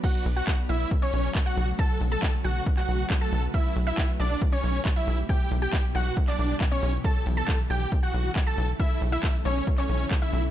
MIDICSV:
0, 0, Header, 1, 6, 480
1, 0, Start_track
1, 0, Tempo, 437956
1, 39, Time_signature, 4, 2, 24, 8
1, 11516, End_track
2, 0, Start_track
2, 0, Title_t, "Synth pluck"
2, 0, Program_c, 0, 84
2, 39, Note_on_c, 0, 78, 100
2, 265, Note_off_c, 0, 78, 0
2, 399, Note_on_c, 0, 78, 97
2, 626, Note_off_c, 0, 78, 0
2, 759, Note_on_c, 0, 76, 99
2, 986, Note_off_c, 0, 76, 0
2, 1120, Note_on_c, 0, 73, 98
2, 1421, Note_off_c, 0, 73, 0
2, 1600, Note_on_c, 0, 78, 98
2, 1826, Note_off_c, 0, 78, 0
2, 1960, Note_on_c, 0, 81, 104
2, 2186, Note_off_c, 0, 81, 0
2, 2320, Note_on_c, 0, 81, 93
2, 2546, Note_off_c, 0, 81, 0
2, 2680, Note_on_c, 0, 78, 96
2, 2906, Note_off_c, 0, 78, 0
2, 3040, Note_on_c, 0, 78, 96
2, 3341, Note_off_c, 0, 78, 0
2, 3520, Note_on_c, 0, 81, 93
2, 3746, Note_off_c, 0, 81, 0
2, 3879, Note_on_c, 0, 76, 100
2, 4106, Note_off_c, 0, 76, 0
2, 4239, Note_on_c, 0, 76, 93
2, 4466, Note_off_c, 0, 76, 0
2, 4599, Note_on_c, 0, 74, 94
2, 4826, Note_off_c, 0, 74, 0
2, 4959, Note_on_c, 0, 73, 96
2, 5261, Note_off_c, 0, 73, 0
2, 5439, Note_on_c, 0, 76, 95
2, 5665, Note_off_c, 0, 76, 0
2, 5799, Note_on_c, 0, 79, 104
2, 6026, Note_off_c, 0, 79, 0
2, 6160, Note_on_c, 0, 79, 98
2, 6386, Note_off_c, 0, 79, 0
2, 6519, Note_on_c, 0, 78, 93
2, 6746, Note_off_c, 0, 78, 0
2, 6880, Note_on_c, 0, 74, 94
2, 7181, Note_off_c, 0, 74, 0
2, 7360, Note_on_c, 0, 73, 93
2, 7586, Note_off_c, 0, 73, 0
2, 7720, Note_on_c, 0, 81, 101
2, 7946, Note_off_c, 0, 81, 0
2, 8079, Note_on_c, 0, 81, 96
2, 8306, Note_off_c, 0, 81, 0
2, 8440, Note_on_c, 0, 79, 98
2, 8666, Note_off_c, 0, 79, 0
2, 8799, Note_on_c, 0, 78, 96
2, 9101, Note_off_c, 0, 78, 0
2, 9279, Note_on_c, 0, 81, 91
2, 9506, Note_off_c, 0, 81, 0
2, 9639, Note_on_c, 0, 76, 102
2, 9866, Note_off_c, 0, 76, 0
2, 10000, Note_on_c, 0, 76, 98
2, 10226, Note_off_c, 0, 76, 0
2, 10360, Note_on_c, 0, 73, 100
2, 10586, Note_off_c, 0, 73, 0
2, 10720, Note_on_c, 0, 73, 95
2, 11022, Note_off_c, 0, 73, 0
2, 11200, Note_on_c, 0, 76, 96
2, 11426, Note_off_c, 0, 76, 0
2, 11516, End_track
3, 0, Start_track
3, 0, Title_t, "Supersaw synth"
3, 0, Program_c, 1, 81
3, 39, Note_on_c, 1, 78, 101
3, 40, Note_on_c, 1, 66, 80
3, 266, Note_off_c, 1, 66, 0
3, 266, Note_off_c, 1, 78, 0
3, 399, Note_on_c, 1, 66, 78
3, 399, Note_on_c, 1, 78, 93
3, 626, Note_off_c, 1, 66, 0
3, 626, Note_off_c, 1, 78, 0
3, 760, Note_on_c, 1, 64, 82
3, 760, Note_on_c, 1, 76, 97
3, 986, Note_off_c, 1, 64, 0
3, 986, Note_off_c, 1, 76, 0
3, 1120, Note_on_c, 1, 61, 81
3, 1120, Note_on_c, 1, 73, 94
3, 1421, Note_off_c, 1, 61, 0
3, 1422, Note_off_c, 1, 73, 0
3, 1600, Note_on_c, 1, 66, 78
3, 1600, Note_on_c, 1, 78, 98
3, 1826, Note_off_c, 1, 66, 0
3, 1826, Note_off_c, 1, 78, 0
3, 1960, Note_on_c, 1, 69, 81
3, 1960, Note_on_c, 1, 81, 103
3, 2186, Note_off_c, 1, 69, 0
3, 2186, Note_off_c, 1, 81, 0
3, 2320, Note_on_c, 1, 69, 76
3, 2320, Note_on_c, 1, 81, 97
3, 2546, Note_off_c, 1, 69, 0
3, 2546, Note_off_c, 1, 81, 0
3, 2680, Note_on_c, 1, 66, 81
3, 2680, Note_on_c, 1, 78, 98
3, 2906, Note_off_c, 1, 66, 0
3, 2906, Note_off_c, 1, 78, 0
3, 3039, Note_on_c, 1, 66, 79
3, 3039, Note_on_c, 1, 78, 96
3, 3341, Note_off_c, 1, 66, 0
3, 3341, Note_off_c, 1, 78, 0
3, 3520, Note_on_c, 1, 69, 75
3, 3520, Note_on_c, 1, 81, 96
3, 3746, Note_off_c, 1, 69, 0
3, 3746, Note_off_c, 1, 81, 0
3, 3879, Note_on_c, 1, 64, 82
3, 3879, Note_on_c, 1, 76, 102
3, 4106, Note_off_c, 1, 64, 0
3, 4106, Note_off_c, 1, 76, 0
3, 4240, Note_on_c, 1, 64, 78
3, 4240, Note_on_c, 1, 76, 98
3, 4466, Note_off_c, 1, 64, 0
3, 4466, Note_off_c, 1, 76, 0
3, 4599, Note_on_c, 1, 62, 78
3, 4599, Note_on_c, 1, 74, 96
3, 4826, Note_off_c, 1, 62, 0
3, 4826, Note_off_c, 1, 74, 0
3, 4960, Note_on_c, 1, 61, 82
3, 4960, Note_on_c, 1, 73, 101
3, 5261, Note_off_c, 1, 61, 0
3, 5261, Note_off_c, 1, 73, 0
3, 5440, Note_on_c, 1, 64, 78
3, 5440, Note_on_c, 1, 76, 99
3, 5666, Note_off_c, 1, 64, 0
3, 5666, Note_off_c, 1, 76, 0
3, 5799, Note_on_c, 1, 67, 81
3, 5799, Note_on_c, 1, 79, 103
3, 6026, Note_off_c, 1, 67, 0
3, 6026, Note_off_c, 1, 79, 0
3, 6160, Note_on_c, 1, 67, 77
3, 6160, Note_on_c, 1, 79, 93
3, 6386, Note_off_c, 1, 67, 0
3, 6386, Note_off_c, 1, 79, 0
3, 6520, Note_on_c, 1, 66, 77
3, 6520, Note_on_c, 1, 78, 97
3, 6746, Note_off_c, 1, 66, 0
3, 6746, Note_off_c, 1, 78, 0
3, 6880, Note_on_c, 1, 62, 80
3, 6880, Note_on_c, 1, 74, 98
3, 7181, Note_off_c, 1, 74, 0
3, 7182, Note_off_c, 1, 62, 0
3, 7360, Note_on_c, 1, 61, 80
3, 7360, Note_on_c, 1, 73, 96
3, 7586, Note_off_c, 1, 61, 0
3, 7586, Note_off_c, 1, 73, 0
3, 7720, Note_on_c, 1, 69, 82
3, 7720, Note_on_c, 1, 81, 104
3, 7946, Note_off_c, 1, 69, 0
3, 7946, Note_off_c, 1, 81, 0
3, 8080, Note_on_c, 1, 69, 78
3, 8080, Note_on_c, 1, 81, 95
3, 8306, Note_off_c, 1, 69, 0
3, 8306, Note_off_c, 1, 81, 0
3, 8440, Note_on_c, 1, 67, 80
3, 8440, Note_on_c, 1, 79, 97
3, 8666, Note_off_c, 1, 67, 0
3, 8666, Note_off_c, 1, 79, 0
3, 8800, Note_on_c, 1, 66, 78
3, 8800, Note_on_c, 1, 78, 97
3, 9102, Note_off_c, 1, 66, 0
3, 9102, Note_off_c, 1, 78, 0
3, 9280, Note_on_c, 1, 69, 78
3, 9280, Note_on_c, 1, 81, 94
3, 9506, Note_off_c, 1, 69, 0
3, 9506, Note_off_c, 1, 81, 0
3, 9640, Note_on_c, 1, 64, 80
3, 9640, Note_on_c, 1, 76, 101
3, 9866, Note_off_c, 1, 64, 0
3, 9866, Note_off_c, 1, 76, 0
3, 9999, Note_on_c, 1, 64, 77
3, 9999, Note_on_c, 1, 76, 96
3, 10226, Note_off_c, 1, 64, 0
3, 10226, Note_off_c, 1, 76, 0
3, 10359, Note_on_c, 1, 61, 80
3, 10359, Note_on_c, 1, 73, 94
3, 10586, Note_off_c, 1, 61, 0
3, 10586, Note_off_c, 1, 73, 0
3, 10720, Note_on_c, 1, 61, 81
3, 10720, Note_on_c, 1, 73, 97
3, 11021, Note_off_c, 1, 61, 0
3, 11021, Note_off_c, 1, 73, 0
3, 11200, Note_on_c, 1, 64, 80
3, 11200, Note_on_c, 1, 76, 98
3, 11426, Note_off_c, 1, 64, 0
3, 11426, Note_off_c, 1, 76, 0
3, 11516, End_track
4, 0, Start_track
4, 0, Title_t, "Ambient pad"
4, 0, Program_c, 2, 92
4, 40, Note_on_c, 2, 49, 81
4, 40, Note_on_c, 2, 54, 74
4, 40, Note_on_c, 2, 57, 75
4, 40, Note_on_c, 2, 66, 76
4, 40, Note_on_c, 2, 69, 93
4, 1941, Note_off_c, 2, 69, 0
4, 1961, Note_on_c, 2, 71, 91
4, 3841, Note_off_c, 2, 66, 0
4, 3842, Note_off_c, 2, 49, 0
4, 3842, Note_off_c, 2, 54, 0
4, 3842, Note_off_c, 2, 57, 0
4, 3861, Note_off_c, 2, 71, 0
4, 3880, Note_on_c, 2, 47, 82
4, 3880, Note_on_c, 2, 52, 74
4, 3880, Note_on_c, 2, 55, 76
4, 3880, Note_on_c, 2, 64, 78
4, 3880, Note_on_c, 2, 67, 92
4, 7681, Note_off_c, 2, 47, 0
4, 7681, Note_off_c, 2, 67, 0
4, 7682, Note_off_c, 2, 55, 0
4, 7682, Note_off_c, 2, 64, 0
4, 7720, Note_on_c, 2, 49, 82
4, 7720, Note_on_c, 2, 57, 77
4, 7720, Note_on_c, 2, 64, 75
4, 7720, Note_on_c, 2, 69, 92
4, 11516, Note_off_c, 2, 49, 0
4, 11516, Note_off_c, 2, 52, 0
4, 11516, Note_off_c, 2, 57, 0
4, 11516, Note_off_c, 2, 64, 0
4, 11516, Note_off_c, 2, 69, 0
4, 11516, End_track
5, 0, Start_track
5, 0, Title_t, "Analog synth bass"
5, 0, Program_c, 3, 38
5, 280, Note_on_c, 3, 35, 100
5, 461, Note_off_c, 3, 35, 0
5, 760, Note_on_c, 3, 35, 96
5, 941, Note_off_c, 3, 35, 0
5, 1240, Note_on_c, 3, 35, 84
5, 1421, Note_off_c, 3, 35, 0
5, 1720, Note_on_c, 3, 35, 107
5, 1901, Note_off_c, 3, 35, 0
5, 2200, Note_on_c, 3, 35, 99
5, 2381, Note_off_c, 3, 35, 0
5, 2680, Note_on_c, 3, 35, 96
5, 2861, Note_off_c, 3, 35, 0
5, 3159, Note_on_c, 3, 35, 84
5, 3341, Note_off_c, 3, 35, 0
5, 3639, Note_on_c, 3, 35, 104
5, 3821, Note_off_c, 3, 35, 0
5, 4119, Note_on_c, 3, 35, 100
5, 4301, Note_off_c, 3, 35, 0
5, 4600, Note_on_c, 3, 35, 97
5, 4781, Note_off_c, 3, 35, 0
5, 5079, Note_on_c, 3, 35, 81
5, 5261, Note_off_c, 3, 35, 0
5, 5559, Note_on_c, 3, 35, 102
5, 5741, Note_off_c, 3, 35, 0
5, 6039, Note_on_c, 3, 35, 101
5, 6221, Note_off_c, 3, 35, 0
5, 6520, Note_on_c, 3, 35, 98
5, 6701, Note_off_c, 3, 35, 0
5, 7000, Note_on_c, 3, 35, 82
5, 7181, Note_off_c, 3, 35, 0
5, 7479, Note_on_c, 3, 35, 103
5, 7661, Note_off_c, 3, 35, 0
5, 7959, Note_on_c, 3, 35, 100
5, 8141, Note_off_c, 3, 35, 0
5, 8439, Note_on_c, 3, 35, 96
5, 8621, Note_off_c, 3, 35, 0
5, 8919, Note_on_c, 3, 35, 85
5, 9101, Note_off_c, 3, 35, 0
5, 9399, Note_on_c, 3, 35, 105
5, 9581, Note_off_c, 3, 35, 0
5, 9879, Note_on_c, 3, 35, 97
5, 10061, Note_off_c, 3, 35, 0
5, 10359, Note_on_c, 3, 35, 94
5, 10541, Note_off_c, 3, 35, 0
5, 10840, Note_on_c, 3, 35, 84
5, 11021, Note_off_c, 3, 35, 0
5, 11320, Note_on_c, 3, 35, 106
5, 11501, Note_off_c, 3, 35, 0
5, 11516, End_track
6, 0, Start_track
6, 0, Title_t, "Drums"
6, 40, Note_on_c, 9, 36, 123
6, 40, Note_on_c, 9, 42, 55
6, 40, Note_on_c, 9, 49, 103
6, 149, Note_off_c, 9, 36, 0
6, 149, Note_off_c, 9, 42, 0
6, 149, Note_off_c, 9, 49, 0
6, 160, Note_on_c, 9, 42, 28
6, 270, Note_off_c, 9, 42, 0
6, 280, Note_on_c, 9, 46, 107
6, 389, Note_off_c, 9, 46, 0
6, 400, Note_on_c, 9, 42, 53
6, 509, Note_off_c, 9, 42, 0
6, 520, Note_on_c, 9, 36, 118
6, 520, Note_on_c, 9, 39, 124
6, 520, Note_on_c, 9, 42, 53
6, 629, Note_off_c, 9, 36, 0
6, 629, Note_off_c, 9, 39, 0
6, 629, Note_off_c, 9, 42, 0
6, 640, Note_on_c, 9, 42, 28
6, 749, Note_off_c, 9, 42, 0
6, 760, Note_on_c, 9, 46, 106
6, 869, Note_off_c, 9, 46, 0
6, 880, Note_on_c, 9, 42, 58
6, 989, Note_off_c, 9, 42, 0
6, 1000, Note_on_c, 9, 36, 118
6, 1000, Note_on_c, 9, 42, 57
6, 1109, Note_off_c, 9, 36, 0
6, 1109, Note_off_c, 9, 42, 0
6, 1120, Note_on_c, 9, 42, 28
6, 1229, Note_off_c, 9, 42, 0
6, 1240, Note_on_c, 9, 46, 107
6, 1350, Note_off_c, 9, 46, 0
6, 1360, Note_on_c, 9, 42, 55
6, 1470, Note_off_c, 9, 42, 0
6, 1480, Note_on_c, 9, 36, 116
6, 1480, Note_on_c, 9, 39, 123
6, 1480, Note_on_c, 9, 42, 56
6, 1589, Note_off_c, 9, 36, 0
6, 1590, Note_off_c, 9, 39, 0
6, 1590, Note_off_c, 9, 42, 0
6, 1600, Note_on_c, 9, 42, 28
6, 1710, Note_off_c, 9, 42, 0
6, 1720, Note_on_c, 9, 46, 106
6, 1830, Note_off_c, 9, 46, 0
6, 1840, Note_on_c, 9, 42, 56
6, 1949, Note_off_c, 9, 42, 0
6, 1960, Note_on_c, 9, 36, 126
6, 1960, Note_on_c, 9, 42, 53
6, 2069, Note_off_c, 9, 36, 0
6, 2069, Note_off_c, 9, 42, 0
6, 2080, Note_on_c, 9, 42, 28
6, 2189, Note_off_c, 9, 42, 0
6, 2200, Note_on_c, 9, 46, 111
6, 2309, Note_off_c, 9, 46, 0
6, 2320, Note_on_c, 9, 42, 51
6, 2429, Note_off_c, 9, 42, 0
6, 2440, Note_on_c, 9, 36, 122
6, 2440, Note_on_c, 9, 39, 126
6, 2440, Note_on_c, 9, 42, 54
6, 2549, Note_off_c, 9, 36, 0
6, 2550, Note_off_c, 9, 39, 0
6, 2550, Note_off_c, 9, 42, 0
6, 2560, Note_on_c, 9, 42, 28
6, 2669, Note_off_c, 9, 42, 0
6, 2679, Note_on_c, 9, 46, 110
6, 2789, Note_off_c, 9, 46, 0
6, 2800, Note_on_c, 9, 42, 54
6, 2909, Note_off_c, 9, 42, 0
6, 2920, Note_on_c, 9, 36, 126
6, 2920, Note_on_c, 9, 42, 55
6, 3029, Note_off_c, 9, 36, 0
6, 3029, Note_off_c, 9, 42, 0
6, 3040, Note_on_c, 9, 39, 39
6, 3040, Note_on_c, 9, 42, 28
6, 3149, Note_off_c, 9, 39, 0
6, 3149, Note_off_c, 9, 42, 0
6, 3160, Note_on_c, 9, 46, 110
6, 3269, Note_off_c, 9, 46, 0
6, 3280, Note_on_c, 9, 42, 54
6, 3390, Note_off_c, 9, 42, 0
6, 3400, Note_on_c, 9, 36, 126
6, 3400, Note_on_c, 9, 39, 126
6, 3400, Note_on_c, 9, 42, 52
6, 3509, Note_off_c, 9, 36, 0
6, 3510, Note_off_c, 9, 39, 0
6, 3510, Note_off_c, 9, 42, 0
6, 3520, Note_on_c, 9, 42, 26
6, 3630, Note_off_c, 9, 42, 0
6, 3640, Note_on_c, 9, 46, 108
6, 3749, Note_off_c, 9, 46, 0
6, 3760, Note_on_c, 9, 42, 54
6, 3869, Note_off_c, 9, 42, 0
6, 3880, Note_on_c, 9, 36, 126
6, 3880, Note_on_c, 9, 42, 52
6, 3989, Note_off_c, 9, 36, 0
6, 3989, Note_off_c, 9, 42, 0
6, 4000, Note_on_c, 9, 42, 26
6, 4109, Note_off_c, 9, 42, 0
6, 4119, Note_on_c, 9, 46, 113
6, 4229, Note_off_c, 9, 46, 0
6, 4240, Note_on_c, 9, 42, 53
6, 4349, Note_off_c, 9, 42, 0
6, 4360, Note_on_c, 9, 36, 127
6, 4360, Note_on_c, 9, 39, 124
6, 4360, Note_on_c, 9, 42, 51
6, 4469, Note_off_c, 9, 36, 0
6, 4469, Note_off_c, 9, 39, 0
6, 4469, Note_off_c, 9, 42, 0
6, 4480, Note_on_c, 9, 42, 25
6, 4589, Note_off_c, 9, 42, 0
6, 4599, Note_on_c, 9, 46, 110
6, 4709, Note_off_c, 9, 46, 0
6, 4720, Note_on_c, 9, 42, 55
6, 4829, Note_off_c, 9, 42, 0
6, 4840, Note_on_c, 9, 36, 127
6, 4840, Note_on_c, 9, 42, 52
6, 4949, Note_off_c, 9, 36, 0
6, 4949, Note_off_c, 9, 42, 0
6, 4960, Note_on_c, 9, 42, 26
6, 5069, Note_off_c, 9, 42, 0
6, 5080, Note_on_c, 9, 46, 111
6, 5189, Note_off_c, 9, 46, 0
6, 5200, Note_on_c, 9, 42, 53
6, 5309, Note_off_c, 9, 42, 0
6, 5320, Note_on_c, 9, 36, 126
6, 5320, Note_on_c, 9, 39, 122
6, 5320, Note_on_c, 9, 42, 51
6, 5429, Note_off_c, 9, 36, 0
6, 5430, Note_off_c, 9, 39, 0
6, 5430, Note_off_c, 9, 42, 0
6, 5440, Note_on_c, 9, 42, 26
6, 5550, Note_off_c, 9, 42, 0
6, 5560, Note_on_c, 9, 46, 113
6, 5670, Note_off_c, 9, 46, 0
6, 5680, Note_on_c, 9, 42, 53
6, 5790, Note_off_c, 9, 42, 0
6, 5800, Note_on_c, 9, 36, 127
6, 5800, Note_on_c, 9, 42, 51
6, 5909, Note_off_c, 9, 36, 0
6, 5910, Note_off_c, 9, 42, 0
6, 5920, Note_on_c, 9, 42, 25
6, 6030, Note_off_c, 9, 42, 0
6, 6040, Note_on_c, 9, 46, 111
6, 6149, Note_off_c, 9, 46, 0
6, 6160, Note_on_c, 9, 42, 51
6, 6269, Note_off_c, 9, 42, 0
6, 6280, Note_on_c, 9, 36, 124
6, 6280, Note_on_c, 9, 39, 113
6, 6280, Note_on_c, 9, 42, 50
6, 6389, Note_off_c, 9, 36, 0
6, 6390, Note_off_c, 9, 39, 0
6, 6390, Note_off_c, 9, 42, 0
6, 6400, Note_on_c, 9, 42, 26
6, 6510, Note_off_c, 9, 42, 0
6, 6520, Note_on_c, 9, 46, 114
6, 6629, Note_off_c, 9, 46, 0
6, 6640, Note_on_c, 9, 42, 53
6, 6749, Note_off_c, 9, 42, 0
6, 6760, Note_on_c, 9, 36, 123
6, 6760, Note_on_c, 9, 42, 51
6, 6870, Note_off_c, 9, 36, 0
6, 6870, Note_off_c, 9, 42, 0
6, 6880, Note_on_c, 9, 39, 37
6, 6880, Note_on_c, 9, 42, 26
6, 6990, Note_off_c, 9, 39, 0
6, 6990, Note_off_c, 9, 42, 0
6, 7000, Note_on_c, 9, 46, 106
6, 7110, Note_off_c, 9, 46, 0
6, 7120, Note_on_c, 9, 42, 51
6, 7230, Note_off_c, 9, 42, 0
6, 7240, Note_on_c, 9, 36, 124
6, 7240, Note_on_c, 9, 39, 114
6, 7240, Note_on_c, 9, 42, 51
6, 7350, Note_off_c, 9, 36, 0
6, 7350, Note_off_c, 9, 39, 0
6, 7350, Note_off_c, 9, 42, 0
6, 7360, Note_on_c, 9, 42, 24
6, 7470, Note_off_c, 9, 42, 0
6, 7481, Note_on_c, 9, 46, 113
6, 7590, Note_off_c, 9, 46, 0
6, 7601, Note_on_c, 9, 42, 51
6, 7710, Note_off_c, 9, 42, 0
6, 7720, Note_on_c, 9, 36, 123
6, 7720, Note_on_c, 9, 42, 51
6, 7829, Note_off_c, 9, 36, 0
6, 7830, Note_off_c, 9, 42, 0
6, 7840, Note_on_c, 9, 42, 26
6, 7950, Note_off_c, 9, 42, 0
6, 7960, Note_on_c, 9, 46, 107
6, 8070, Note_off_c, 9, 46, 0
6, 8080, Note_on_c, 9, 42, 50
6, 8190, Note_off_c, 9, 42, 0
6, 8200, Note_on_c, 9, 36, 120
6, 8200, Note_on_c, 9, 39, 114
6, 8200, Note_on_c, 9, 42, 51
6, 8310, Note_off_c, 9, 36, 0
6, 8310, Note_off_c, 9, 39, 0
6, 8310, Note_off_c, 9, 42, 0
6, 8320, Note_on_c, 9, 42, 26
6, 8430, Note_off_c, 9, 42, 0
6, 8440, Note_on_c, 9, 46, 105
6, 8550, Note_off_c, 9, 46, 0
6, 8560, Note_on_c, 9, 42, 52
6, 8670, Note_off_c, 9, 42, 0
6, 8680, Note_on_c, 9, 36, 122
6, 8680, Note_on_c, 9, 42, 49
6, 8789, Note_off_c, 9, 36, 0
6, 8789, Note_off_c, 9, 42, 0
6, 8800, Note_on_c, 9, 42, 26
6, 8910, Note_off_c, 9, 42, 0
6, 8920, Note_on_c, 9, 46, 108
6, 9030, Note_off_c, 9, 46, 0
6, 9040, Note_on_c, 9, 42, 52
6, 9150, Note_off_c, 9, 42, 0
6, 9160, Note_on_c, 9, 36, 116
6, 9160, Note_on_c, 9, 39, 109
6, 9160, Note_on_c, 9, 42, 51
6, 9269, Note_off_c, 9, 36, 0
6, 9269, Note_off_c, 9, 39, 0
6, 9269, Note_off_c, 9, 42, 0
6, 9280, Note_on_c, 9, 42, 25
6, 9390, Note_off_c, 9, 42, 0
6, 9400, Note_on_c, 9, 46, 104
6, 9509, Note_off_c, 9, 46, 0
6, 9520, Note_on_c, 9, 42, 53
6, 9629, Note_off_c, 9, 42, 0
6, 9640, Note_on_c, 9, 36, 120
6, 9640, Note_on_c, 9, 42, 52
6, 9749, Note_off_c, 9, 36, 0
6, 9749, Note_off_c, 9, 42, 0
6, 9760, Note_on_c, 9, 42, 28
6, 9869, Note_off_c, 9, 42, 0
6, 9880, Note_on_c, 9, 46, 108
6, 9989, Note_off_c, 9, 46, 0
6, 10000, Note_on_c, 9, 42, 52
6, 10109, Note_off_c, 9, 42, 0
6, 10120, Note_on_c, 9, 36, 118
6, 10120, Note_on_c, 9, 39, 113
6, 10120, Note_on_c, 9, 42, 53
6, 10229, Note_off_c, 9, 36, 0
6, 10229, Note_off_c, 9, 39, 0
6, 10229, Note_off_c, 9, 42, 0
6, 10240, Note_on_c, 9, 42, 26
6, 10350, Note_off_c, 9, 42, 0
6, 10360, Note_on_c, 9, 46, 104
6, 10469, Note_off_c, 9, 46, 0
6, 10480, Note_on_c, 9, 42, 53
6, 10590, Note_off_c, 9, 42, 0
6, 10600, Note_on_c, 9, 36, 117
6, 10600, Note_on_c, 9, 42, 54
6, 10709, Note_off_c, 9, 36, 0
6, 10709, Note_off_c, 9, 42, 0
6, 10720, Note_on_c, 9, 39, 36
6, 10720, Note_on_c, 9, 42, 26
6, 10830, Note_off_c, 9, 39, 0
6, 10830, Note_off_c, 9, 42, 0
6, 10840, Note_on_c, 9, 46, 101
6, 10949, Note_off_c, 9, 46, 0
6, 10960, Note_on_c, 9, 42, 54
6, 11070, Note_off_c, 9, 42, 0
6, 11080, Note_on_c, 9, 36, 117
6, 11080, Note_on_c, 9, 39, 109
6, 11080, Note_on_c, 9, 42, 52
6, 11189, Note_off_c, 9, 36, 0
6, 11190, Note_off_c, 9, 39, 0
6, 11190, Note_off_c, 9, 42, 0
6, 11200, Note_on_c, 9, 42, 26
6, 11310, Note_off_c, 9, 42, 0
6, 11320, Note_on_c, 9, 46, 106
6, 11430, Note_off_c, 9, 46, 0
6, 11441, Note_on_c, 9, 42, 54
6, 11516, Note_off_c, 9, 42, 0
6, 11516, End_track
0, 0, End_of_file